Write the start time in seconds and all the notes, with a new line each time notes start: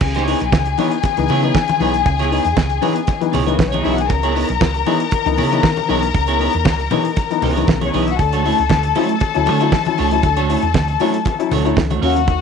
0.01 C#2 C#3 G#4 G#5, muted clean electric guitar stroke, kick, crash, muted conga
0.14 B3 E4 G#4 C#5, snare, closed hi-hat
0.27 B3 D#4 E4 G#4 C#5, open hi-hat
0.40 B1, muted clean electric guitar stroke, closed hi-hat
0.52 C#2, kick, snare, high conga
0.65 muted clean electric guitar stroke, closed hi-hat
0.77 E3 B3 D#4 E4 G#4 C#5, open hi-hat, muted conga
0.91 muted clean electric guitar stroke, closed hi-hat
1.03 muted clean electric guitar stroke, kick, closed hi-hat, muted conga
1.17 C#2 E3 B3 D#4, muted clean electric guitar stroke, closed hi-hat
1.28 C#3 B3 E4 G#4 C#5, open hi-hat, muted conga
1.42 E3 B3 D#4 E4 G#4 C#5, closed hi-hat
1.54 C#3, kick, snare, high conga
1.68 muted clean electric guitar stroke, closed hi-hat, high conga
1.80 B1 E3 B3 D#4 E4 G#4 C#5, open hi-hat
1.93 B3 D#4, muted clean electric guitar stroke, closed hi-hat
2.05 C#2 C#3, muted clean electric guitar stroke, kick, closed hi-hat, muted conga
2.19 B3 E4 G#4 C#5, snare, closed hi-hat
2.31 B3 D#4 E4 G#4 C#5, open hi-hat
2.44 E2, muted clean electric guitar stroke, closed hi-hat
2.57 C#2, kick, snare, high conga
2.70 muted clean electric guitar stroke, closed hi-hat
2.81 E3 B3 D#4 E4 G#4 C#5, open hi-hat, muted conga
2.95 muted clean electric guitar stroke, closed hi-hat
3.07 muted clean electric guitar stroke, kick, closed hi-hat, muted conga
3.21 E3 B3 D#4, muted clean electric guitar stroke, closed hi-hat
3.32 C#2 C#3 B3 E4 G#4 C#5, open hi-hat, muted conga, low conga
3.46 E3 B3 D#4 E4 G#4 C#5, closed hi-hat
3.50 A#3 A#4
3.59 B1 C#3 B3 B4, kick, snare, high conga
3.67 C#4 C#5
3.72 B3 D#4 E4 G#4 C#5 D#5, closed hi-hat, high conga
3.83 B1 E3 B3 D#4 E4 G#4 C#5 E5, open hi-hat
3.92 F#4 F#5
3.98 B3 D#4 G#4 G#5, muted clean electric guitar stroke, closed hi-hat
4.08 C#2 C#3 A#4 A#5, muted clean electric guitar stroke, kick, closed hi-hat, muted conga
4.23 B3 E4 G#4 C#5, closed hi-hat
4.34 B3 D#4 E4 G#4 C#5, open hi-hat
4.49 B1, muted clean electric guitar stroke, closed hi-hat
4.61 C#2, kick, snare, high conga
4.74 muted clean electric guitar stroke, closed hi-hat
4.86 E3 B3 D#4 E4 G#4 C#5, open hi-hat, muted conga
5.00 muted clean electric guitar stroke, closed hi-hat
5.11 muted clean electric guitar stroke, kick, closed hi-hat, muted conga
5.26 C#2 E3 B3 D#4, muted clean electric guitar stroke, closed hi-hat
5.38 C#3 B3 E4 G#4 C#5, open hi-hat, muted conga
5.51 E3 B3 D#4 E4 G#4 C#5, closed hi-hat
5.63 C#3, kick, snare, high conga
5.77 muted clean electric guitar stroke, closed hi-hat, high conga
5.88 B1 E3 B3 D#4 E4 G#4 C#5, open hi-hat
6.02 B3 D#4, muted clean electric guitar stroke, closed hi-hat
6.14 C#2 C#3, muted clean electric guitar stroke, kick, closed hi-hat, muted conga
6.28 B3 E4 G#4 C#5, closed hi-hat
6.40 B3 D#4 E4 G#4 C#5, open hi-hat
6.53 E2, muted clean electric guitar stroke, closed hi-hat
6.65 C#2, kick, snare, high conga
6.79 muted clean electric guitar stroke, closed hi-hat
6.91 E3 B3 D#4 E4 G#4 C#5, open hi-hat, muted conga, low conga
7.05 muted clean electric guitar stroke, closed hi-hat
7.16 muted clean electric guitar stroke, kick, closed hi-hat, muted conga
7.30 E3 B3 D#4, muted clean electric guitar stroke, closed hi-hat
7.42 C#2 C#3 B3 E4 G#4 C#5, open hi-hat, muted conga, low conga
7.56 E3 B3 D#4 E4 G#4 C#5, closed hi-hat
7.67 B1 C#3, muted clean electric guitar stroke, kick, snare, high conga
7.81 B3 C#4 E4 G#4 C#5, closed hi-hat, high conga
7.93 B1 E3 B3 D#4 E4 G#4 C#5 D#5, open hi-hat
8.02 E4 E5
8.07 B3 D#4 F#4 F#5, muted clean electric guitar stroke, closed hi-hat
8.18 D2 D3 A4 A5, muted clean electric guitar stroke, kick, closed hi-hat
8.32 A3 D4 F#4 C#5, closed hi-hat
8.44 A3 C#4 D4 E4 F#4 C#5, open hi-hat
8.58 C#2, muted clean electric guitar stroke, closed hi-hat
8.70 D2, kick, snare, high conga
8.83 muted clean electric guitar stroke, closed hi-hat
8.95 F#3 A3 C#4 D4 E4 F#4 C#5, open hi-hat, muted conga
9.09 muted clean electric guitar stroke, closed hi-hat
9.20 muted clean electric guitar stroke, kick, closed hi-hat, muted conga
9.34 D2 F#3 C#4 E4, muted clean electric guitar stroke, closed hi-hat
9.46 D3 A3 D4 F#4 C#5, open hi-hat, muted conga
9.60 F#3 A3 C#4 D4 E4 F#4 C#5, closed hi-hat
9.72 kick, snare, high conga
9.85 F#3 C#4 E4, muted clean electric guitar stroke, closed hi-hat, high conga
9.98 C#2 D3 A3 D4 F#4 C#5, open hi-hat
10.11 F#3 C#4 E4, muted clean electric guitar stroke, closed hi-hat
10.23 D2 D3, muted clean electric guitar stroke, kick, closed hi-hat, muted conga
10.36 A3 D4 F#4 C#5, closed hi-hat
10.49 A3 C#4 D4 E4 F#4 C#5, open hi-hat
10.62 E2, muted clean electric guitar stroke, closed hi-hat
10.74 D2, kick, snare, high conga
10.88 muted clean electric guitar stroke, closed hi-hat
11.00 F#3 A3 C#4 D4 E4 F#4 C#5, open hi-hat, muted conga
11.14 muted clean electric guitar stroke, closed hi-hat
11.25 muted clean electric guitar stroke, kick, closed hi-hat, muted conga
11.39 F#3 C#4 E4, muted clean electric guitar stroke, closed hi-hat
11.51 D2 D3 A3 D4 F#4 C#5, open hi-hat, muted conga, low conga
11.64 F#3 A3 C#4 D4 E4 F#4 C#5, closed hi-hat
11.77 C#2 D3, muted clean electric guitar stroke, kick, snare, high conga
11.90 A3 D4 F#4 C#5, closed hi-hat, high conga
12.01 D#2 F#3 A#3 C#4 F#4 A#4 C#5 F#5, open hi-hat
12.15 A#3 C#4, muted clean electric guitar stroke, closed hi-hat
12.28 D#3, muted clean electric guitar stroke, kick, closed hi-hat, muted conga